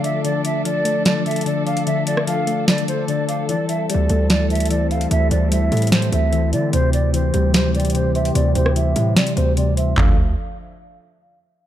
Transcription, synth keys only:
0, 0, Header, 1, 2, 480
1, 0, Start_track
1, 0, Key_signature, -1, "minor"
1, 0, Tempo, 405405
1, 291, Time_signature, 4, 2, 24, 8
1, 13815, End_track
2, 0, Start_track
2, 0, Title_t, "Synth keys"
2, 0, Program_c, 0, 88
2, 0, Control_c, 0, 64, 127
2, 0, Note_on_c, 0, 50, 101
2, 0, Note_on_c, 0, 53, 75
2, 0, Note_on_c, 0, 57, 94
2, 0, Note_on_c, 0, 74, 82
2, 43, Note_off_c, 0, 74, 0
2, 43, Note_on_c, 0, 74, 87
2, 275, Note_off_c, 0, 50, 0
2, 289, Note_on_c, 0, 50, 90
2, 291, Note_off_c, 0, 57, 0
2, 514, Note_off_c, 0, 50, 0
2, 528, Note_on_c, 0, 50, 76
2, 767, Note_off_c, 0, 53, 0
2, 767, Note_on_c, 0, 53, 82
2, 1003, Note_on_c, 0, 57, 93
2, 1239, Note_off_c, 0, 50, 0
2, 1247, Note_off_c, 0, 74, 0
2, 1254, Note_on_c, 0, 50, 75
2, 1475, Note_off_c, 0, 50, 0
2, 1490, Note_on_c, 0, 50, 78
2, 1714, Note_off_c, 0, 50, 0
2, 1728, Note_on_c, 0, 50, 94
2, 1969, Note_off_c, 0, 53, 0
2, 1976, Note_on_c, 0, 74, 84
2, 2197, Note_off_c, 0, 50, 0
2, 2207, Note_off_c, 0, 57, 0
2, 2211, Note_on_c, 0, 50, 97
2, 2442, Note_off_c, 0, 50, 0
2, 2456, Note_on_c, 0, 50, 75
2, 2691, Note_on_c, 0, 53, 77
2, 2925, Note_on_c, 0, 57, 89
2, 3153, Note_off_c, 0, 50, 0
2, 3168, Note_on_c, 0, 50, 77
2, 3173, Note_off_c, 0, 74, 0
2, 3393, Note_off_c, 0, 50, 0
2, 3407, Note_on_c, 0, 50, 69
2, 3637, Note_off_c, 0, 50, 0
2, 3652, Note_on_c, 0, 50, 91
2, 3891, Note_off_c, 0, 53, 0
2, 3894, Note_on_c, 0, 74, 75
2, 4128, Note_off_c, 0, 57, 0
2, 4131, Note_off_c, 0, 50, 0
2, 4133, Note_off_c, 0, 74, 0
2, 4133, Note_on_c, 0, 52, 82
2, 4144, Control_c, 0, 64, 0
2, 4355, Control_c, 0, 64, 127
2, 4360, Note_off_c, 0, 52, 0
2, 4374, Note_on_c, 0, 52, 75
2, 4613, Note_on_c, 0, 55, 83
2, 4859, Note_on_c, 0, 57, 92
2, 5084, Note_off_c, 0, 52, 0
2, 5099, Note_on_c, 0, 52, 76
2, 5316, Note_off_c, 0, 52, 0
2, 5330, Note_on_c, 0, 52, 75
2, 5556, Note_off_c, 0, 52, 0
2, 5570, Note_on_c, 0, 52, 98
2, 5812, Note_off_c, 0, 55, 0
2, 5815, Note_on_c, 0, 64, 84
2, 6034, Note_off_c, 0, 52, 0
2, 6049, Note_on_c, 0, 52, 87
2, 6055, Note_off_c, 0, 57, 0
2, 6273, Note_off_c, 0, 52, 0
2, 6288, Note_on_c, 0, 52, 80
2, 6530, Note_on_c, 0, 55, 78
2, 6765, Note_on_c, 0, 57, 90
2, 6990, Note_off_c, 0, 52, 0
2, 7005, Note_on_c, 0, 52, 74
2, 7013, Note_off_c, 0, 64, 0
2, 7234, Note_off_c, 0, 52, 0
2, 7248, Note_on_c, 0, 52, 70
2, 7475, Note_off_c, 0, 52, 0
2, 7489, Note_on_c, 0, 52, 95
2, 7731, Note_off_c, 0, 55, 0
2, 7735, Note_on_c, 0, 64, 80
2, 7968, Note_off_c, 0, 57, 0
2, 7969, Note_on_c, 0, 48, 93
2, 7970, Note_off_c, 0, 52, 0
2, 7973, Note_off_c, 0, 64, 0
2, 7987, Control_c, 0, 64, 0
2, 8177, Control_c, 0, 64, 127
2, 8194, Note_off_c, 0, 48, 0
2, 8209, Note_on_c, 0, 48, 78
2, 8447, Note_on_c, 0, 52, 78
2, 8689, Note_on_c, 0, 55, 96
2, 8918, Note_off_c, 0, 48, 0
2, 8932, Note_on_c, 0, 48, 75
2, 9161, Note_off_c, 0, 48, 0
2, 9175, Note_on_c, 0, 48, 73
2, 9391, Note_off_c, 0, 48, 0
2, 9406, Note_on_c, 0, 48, 90
2, 9649, Note_off_c, 0, 52, 0
2, 9657, Note_on_c, 0, 72, 92
2, 9877, Note_off_c, 0, 48, 0
2, 9890, Note_off_c, 0, 55, 0
2, 9892, Note_on_c, 0, 48, 91
2, 10112, Note_off_c, 0, 48, 0
2, 10127, Note_on_c, 0, 48, 77
2, 10370, Note_on_c, 0, 52, 74
2, 10616, Note_on_c, 0, 55, 93
2, 10838, Note_off_c, 0, 48, 0
2, 10853, Note_on_c, 0, 48, 76
2, 10854, Note_off_c, 0, 72, 0
2, 11078, Note_off_c, 0, 48, 0
2, 11092, Note_on_c, 0, 48, 72
2, 11319, Note_off_c, 0, 48, 0
2, 11333, Note_on_c, 0, 48, 98
2, 11567, Note_on_c, 0, 72, 88
2, 11571, Note_off_c, 0, 52, 0
2, 11809, Note_off_c, 0, 72, 0
2, 11811, Note_on_c, 0, 50, 87
2, 11811, Note_on_c, 0, 53, 79
2, 11811, Note_on_c, 0, 57, 80
2, 11811, Note_on_c, 0, 62, 93
2, 11812, Note_off_c, 0, 48, 0
2, 11814, Note_off_c, 0, 55, 0
2, 11825, Control_c, 0, 64, 0
2, 12034, Note_off_c, 0, 53, 0
2, 12034, Note_off_c, 0, 57, 0
2, 12034, Note_off_c, 0, 62, 0
2, 12035, Note_off_c, 0, 50, 0
2, 13815, End_track
0, 0, End_of_file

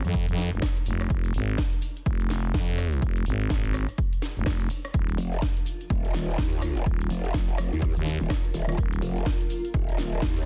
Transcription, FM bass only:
0, 0, Header, 1, 2, 480
1, 0, Start_track
1, 0, Key_signature, -4, "minor"
1, 0, Tempo, 480000
1, 1101, Time_signature, 4, 2, 24, 8
1, 10454, End_track
2, 0, Start_track
2, 0, Title_t, "FM bass"
2, 0, Program_c, 0, 39
2, 47, Note_on_c, 0, 41, 99
2, 264, Note_off_c, 0, 41, 0
2, 287, Note_on_c, 0, 41, 103
2, 504, Note_off_c, 0, 41, 0
2, 527, Note_on_c, 0, 29, 94
2, 606, Note_off_c, 0, 29, 0
2, 861, Note_on_c, 0, 29, 94
2, 1086, Note_off_c, 0, 29, 0
2, 1101, Note_on_c, 0, 29, 96
2, 1326, Note_off_c, 0, 29, 0
2, 1342, Note_on_c, 0, 32, 96
2, 1567, Note_off_c, 0, 32, 0
2, 2061, Note_on_c, 0, 29, 97
2, 2526, Note_off_c, 0, 29, 0
2, 2541, Note_on_c, 0, 41, 92
2, 3006, Note_off_c, 0, 41, 0
2, 3021, Note_on_c, 0, 29, 99
2, 3246, Note_off_c, 0, 29, 0
2, 3263, Note_on_c, 0, 32, 98
2, 3487, Note_off_c, 0, 32, 0
2, 3501, Note_on_c, 0, 32, 100
2, 3864, Note_off_c, 0, 32, 0
2, 4369, Note_on_c, 0, 29, 97
2, 4687, Note_off_c, 0, 29, 0
2, 4942, Note_on_c, 0, 27, 97
2, 5167, Note_off_c, 0, 27, 0
2, 6862, Note_on_c, 0, 27, 95
2, 7087, Note_off_c, 0, 27, 0
2, 7968, Note_on_c, 0, 39, 103
2, 8185, Note_off_c, 0, 39, 0
2, 8782, Note_on_c, 0, 27, 99
2, 9007, Note_off_c, 0, 27, 0
2, 10454, End_track
0, 0, End_of_file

